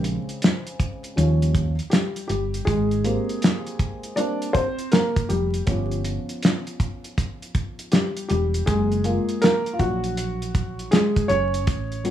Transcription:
Already playing: fretless electric bass A#1, upright piano C#3 G#3 C4
0.04 closed hi-hat
0.29 closed hi-hat
0.42 snare, closed hi-hat
0.67 closed hi-hat
0.80 kick, closed hi-hat
1.04 closed hi-hat
1.16 fretless electric bass D#2, upright piano F3 G3 C#4, closed hi-hat
1.42 closed hi-hat
1.55 kick, closed hi-hat
1.79 closed hi-hat
1.90 upright piano G3 G4, snare, closed hi-hat
2.16 closed hi-hat
2.28 fretless electric bass G1, upright piano G3 G4, closed hi-hat
2.54 closed hi-hat
2.65 fretless electric bass G#1, upright piano G#3 G#4, kick, closed hi-hat
2.91 closed hi-hat
3.04 upright piano A#3 C4 G4, closed hi-hat
3.29 closed hi-hat
3.42 snare, closed hi-hat
3.67 closed hi-hat
3.79 kick, closed hi-hat
4.03 closed hi-hat
4.16 upright piano G3 A#3 C4 D4 D5, closed hi-hat
4.42 closed hi-hat
4.53 upright piano C4 C5, kick, closed hi-hat
4.78 closed hi-hat
4.92 upright piano A#3 A#4, snare, closed hi-hat
5.16 kick, closed hi-hat
5.29 fretless electric bass F1, upright piano G3 G4, closed hi-hat
5.54 closed hi-hat
5.66 fretless electric bass G1, upright piano F3 B3 C#4, kick, closed hi-hat
5.92 closed hi-hat
6.05 closed hi-hat
6.29 closed hi-hat
6.42 snare, closed hi-hat
6.67 closed hi-hat
6.80 kick, closed hi-hat
7.04 closed hi-hat
7.18 kick, closed hi-hat
7.42 closed hi-hat
7.55 kick, closed hi-hat
7.79 closed hi-hat
7.92 upright piano G3 G4, snare, closed hi-hat
8.17 closed hi-hat
8.28 fretless electric bass E1, upright piano G3 G4, closed hi-hat
8.54 closed hi-hat
8.66 fretless electric bass F#1, upright piano G#3 G#4, kick, closed hi-hat
8.92 closed hi-hat
9.04 upright piano G#3 A#3 F4, closed hi-hat
9.29 closed hi-hat
9.42 upright piano A#3 A#4, snare, closed hi-hat
9.66 closed hi-hat
9.73 upright piano F4
9.79 fretless electric bass A#1, upright piano F#3 F#4, kick, closed hi-hat
10.04 closed hi-hat
10.17 closed hi-hat
10.42 closed hi-hat
10.55 kick, closed hi-hat
10.79 closed hi-hat
10.91 upright piano G#3 G#4, snare, closed hi-hat
11.16 kick, closed hi-hat
11.28 fretless electric bass F#1, upright piano C#4 C#5, closed hi-hat
11.54 closed hi-hat
11.67 fretless electric bass A1, kick, closed hi-hat
11.92 closed hi-hat
12.04 upright piano G3 B3 C#4 F#4, closed hi-hat

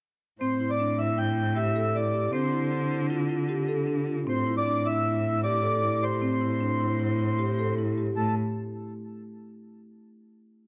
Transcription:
0.40 cello A2, marimba C4, accordion C5
0.60 marimba E4
0.70 accordion D5
0.80 marimba D4
0.99 marimba E4, accordion E5
1.18 marimba E4, accordion G5
1.38 marimba E4
1.56 marimba G4, accordion E5
1.76 marimba A4
1.95 marimba E4, accordion D5
2.14 marimba G4
2.33 cello D3, marimba C4, accordion C5
2.52 marimba E4
2.72 marimba D4
2.91 marimba E4
3.10 marimba F4
3.30 marimba F4
3.49 marimba G4
3.69 marimba A4
3.88 marimba D4
4.07 marimba F4
4.27 cello A2, marimba C4, accordion C5
4.46 marimba E4
4.58 accordion D5
4.66 marimba D4
4.85 marimba E4, accordion E5
5.05 marimba E4
5.44 marimba G4, accordion D5
5.63 marimba A4
5.83 marimba E4
6.02 marimba G4, accordion C5
6.22 cello A2, marimba C4
6.41 marimba E4
6.60 marimba D4
6.80 marimba E4
6.99 marimba E4
7.19 marimba E4
7.39 marimba G4
7.59 marimba A4
7.78 marimba E4
7.98 marimba G4
8.16 cello A2, marimba A3, accordion A4

